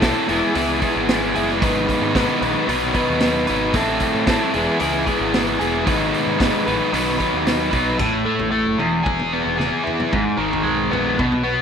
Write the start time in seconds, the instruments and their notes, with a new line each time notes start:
Already playing: picked electric bass B1
0.02 overdriven electric guitar A2 A3 C4 E4 A4, kick, snare, open hi-hat
0.29 picked electric bass E1, overdriven electric guitar E2 E3 G#3 B3 E4 G#4, open hi-hat
0.55 picked electric bass C#2, overdriven electric guitar G#3 B3 E4 G#4, open hi-hat
0.81 overdriven electric guitar G#3 B3 E4 G#4, kick, open hi-hat
0.96 picked electric bass G#1
1.09 snare, open hi-hat
1.35 picked electric bass F#1, overdriven electric guitar G#3 B3 E4 G#4, open hi-hat
1.49 snare
1.61 picked electric bass G#1, overdriven electric guitar G#2 D#3 G#3 B3 D#4 B4, kick, open hi-hat
1.89 kick, open hi-hat
2.02 picked electric bass G#2
2.15 overdriven electric guitar G#2 D#3 G#3 B3 D#4 B4, kick, snare, open hi-hat
2.42 picked electric bass A#1, overdriven electric guitar G#3 B3 D#4 B4, open hi-hat
2.66 picked electric bass B1, overdriven electric guitar B2 D#3 F#3 B3 D#4 B4, open hi-hat
2.94 overdriven electric guitar F#3 B3 D#4 B4, kick, open hi-hat
3.09 picked electric bass D#2
3.20 snare, open hi-hat
3.47 picked electric bass G#1, overdriven electric guitar F#3 B3 D#4 B4, open hi-hat
3.74 picked electric bass A1, overdriven electric guitar A2 A3 C4 E4 A4, kick, open hi-hat
4.00 kick, open hi-hat
4.15 picked electric bass A2
4.27 overdriven electric guitar A2 A3 C4 E4 A4, kick, snare, open hi-hat
4.54 picked electric bass E1, overdriven electric guitar E2 E3 G#3 B3 E4 G#4, open hi-hat
4.79 picked electric bass C#2, overdriven electric guitar G#3 B3 E4 G#4, open hi-hat
5.06 overdriven electric guitar G#3 B3 E4 G#4, kick, open hi-hat
5.20 picked electric bass G#1
5.34 snare, open hi-hat
5.59 picked electric bass E1, overdriven electric guitar G#3 B3 E4 G#4, open hi-hat
5.85 picked electric bass G#1, overdriven electric guitar G#2 D#3 G#3 B3 D#4 B4, kick, open hi-hat
6.14 open hi-hat
6.27 picked electric bass G#2
6.38 overdriven electric guitar G#2 D#3 G#3 B3 D#4 B4, kick, snare, open hi-hat
6.66 picked electric bass A1, overdriven electric guitar G#3 B3 D#4 B4, open hi-hat
6.92 picked electric bass B1, overdriven electric guitar B2 D#3 F#3 B3 D#4 B4, open hi-hat
7.08 snare
7.18 overdriven electric guitar F#3 B3 D#4 B4, kick, open hi-hat
7.33 picked electric bass D#2
7.47 snare, open hi-hat
7.71 picked electric bass B1, overdriven electric guitar F#3 B3 D#4 B4, kick, open hi-hat
7.98 picked electric bass A1, overdriven electric guitar A2, kick, floor tom, crash
8.25 overdriven electric guitar A3
8.39 picked electric bass A1, floor tom
8.51 overdriven electric guitar A3
8.65 picked electric bass F#1
8.78 picked electric bass E1, overdriven electric guitar E2, floor tom
9.04 overdriven electric guitar G#4, kick, floor tom
9.20 floor tom
9.33 overdriven electric guitar B3
9.46 picked electric bass E1
9.58 overdriven electric guitar G#4, snare, mid tom
9.83 overdriven electric guitar E4, floor tom
10.00 floor tom
10.12 picked electric bass G#1, overdriven electric guitar G#2, kick, floor tom
10.37 picked electric bass G#1, overdriven electric guitar D#3
10.53 floor tom
10.63 picked electric bass B1, overdriven electric guitar G#3
10.90 picked electric bass A#1, overdriven electric guitar B3, floor tom
11.19 picked electric bass B1, overdriven electric guitar B2, kick, floor tom
11.31 picked electric bass B1, floor tom
11.44 overdriven electric guitar B3